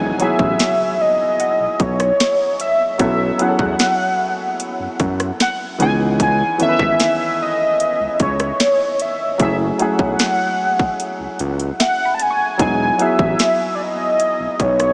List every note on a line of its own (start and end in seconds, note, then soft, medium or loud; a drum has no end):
0.00 0.11 E1 loud
0.00 0.14 F#3 medium
0.00 0.15 B3 medium
0.00 0.15 D#4 medium
0.00 0.16 E4 medium
0.00 0.16 G#4 medium
0.00 impact medium
0.18 1.60 F#3 medium
0.18 1.61 B3 medium
0.18 1.62 E4 medium
0.18 1.61 F#4 medium
0.18 1.62 G#4 medium
0.18 1.07 C#5 medium
0.18 closed hi-hat medium
0.22 1.03 E5 loud
0.39 0.55 A1 medium
0.39 kick loud
0.59 snare loud
0.59 closed hi-hat medium
1.01 1.83 D#5 loud
1.40 2.27 F#5 medium
1.40 closed hi-hat medium
1.60 1.68 B1 medium
1.80 2.11 B1 medium
1.80 2.60 C#5 loud
1.80 kick medium
1.80 closed hi-hat medium
2.00 cross-stick medium
2.00 closed hi-hat medium
2.20 snare loud
2.20 closed hi-hat medium
2.60 2.98 E5 medium
2.60 closed hi-hat medium
2.98 3.31 B1 loud
2.98 3.34 F#3 medium
2.98 3.35 B3 medium
2.98 3.35 C#4 medium
2.98 3.36 E4 medium
2.98 3.36 A4 medium
2.98 3.87 C#5 medium
2.98 3.43 E5 loud
2.98 kick loud
2.98 closed hi-hat medium
3.38 4.80 F#3 medium
3.38 4.81 B3 medium
3.38 4.81 C#4 medium
3.38 4.82 E4 medium
3.38 3.47 G#4 medium
3.38 5.01 F#5 loud
3.38 closed hi-hat medium
3.48 4.85 A4 medium
3.59 3.75 E2 medium
3.59 kick loud
3.79 snare loud
3.79 closed hi-hat medium
4.60 closed hi-hat medium
4.80 4.88 F#2 medium
5.00 5.31 F#2 medium
5.00 kick medium
5.00 closed hi-hat medium
5.20 cross-stick medium
5.20 closed hi-hat soft
5.40 5.56 F#5 loud
5.40 snare loud
5.40 closed hi-hat medium
5.78 6.43 C#2 loud
5.78 5.85 D#3 medium
5.78 6.50 B3 medium
5.78 6.51 C#4 medium
5.78 6.51 D#4 medium
5.78 5.96 G#5 loud
5.78 closed hi-hat medium
5.82 6.53 E3 medium
5.82 6.52 G#4 medium
6.20 6.58 G#5 loud
6.20 kick loud
6.20 closed hi-hat medium
6.58 8.02 D#3 medium
6.58 8.00 E3 medium
6.58 8.01 B3 medium
6.58 8.01 C#4 medium
6.58 6.67 A4 medium
6.58 closed hi-hat medium
6.62 7.37 E5 loud
6.69 8.06 B4 medium
6.79 6.95 G#1 medium
6.79 kick loud
7.00 snare loud
7.00 closed hi-hat medium
7.42 8.17 D#5 loud
7.80 closed hi-hat medium
8.00 8.08 C#2 medium
8.20 8.51 C#2 medium
8.20 9.03 C#5 loud
8.20 kick medium
8.20 closed hi-hat medium
8.40 cross-stick medium
8.40 closed hi-hat soft
8.60 snare loud
8.60 closed hi-hat medium
9.00 9.41 E5 medium
9.00 closed hi-hat medium
9.38 9.71 F#1 loud
9.38 9.74 F#3 medium
9.38 9.75 A3 medium
9.38 9.75 C#4 medium
9.38 9.76 E4 medium
9.38 kick loud
9.38 closed hi-hat medium
9.42 9.76 G#4 medium
9.42 9.56 E5 medium
9.78 11.20 F#3 medium
9.78 11.21 A3 medium
9.78 11.21 C#4 medium
9.78 11.22 E4 medium
9.78 11.22 G#4 medium
9.78 11.37 F#5 loud
9.78 closed hi-hat medium
9.99 10.15 B1 medium
9.99 kick loud
10.19 snare loud
10.19 closed hi-hat medium
10.79 kick loud
11.00 closed hi-hat medium
11.20 11.28 C#2 medium
11.39 11.71 C#2 medium
11.39 closed hi-hat medium
11.60 closed hi-hat medium
11.80 12.67 E5 medium
11.80 12.16 F#5 loud
11.80 snare loud
11.80 closed hi-hat medium
12.05 12.90 B5 medium
12.14 12.23 A5 medium
12.20 12.61 G#5 loud
12.20 closed hi-hat medium
12.30 13.12 C#6 medium
12.58 12.91 E1 loud
12.58 12.94 F#3 medium
12.58 12.94 B3 medium
12.58 12.95 D#4 medium
12.58 12.96 E4 medium
12.58 13.03 G#5 loud
12.58 kick loud
12.58 closed hi-hat medium
12.62 12.96 G#4 medium
12.97 14.40 F#3 medium
12.97 14.41 B3 medium
12.97 14.42 E4 medium
12.97 14.41 F#4 medium
12.97 closed hi-hat medium
13.02 14.42 G#4 medium
13.02 13.76 E5 loud
13.19 13.35 A1 medium
13.19 kick medium
13.39 snare loud
13.39 closed hi-hat medium
13.75 13.83 D5 medium
13.82 14.64 D#5 loud
14.20 closed hi-hat medium
14.40 14.48 B1 medium
14.60 14.91 B1 loud
14.60 14.93 C#5 loud
14.60 kick medium
14.60 closed hi-hat medium
14.80 cross-stick medium
14.80 closed hi-hat medium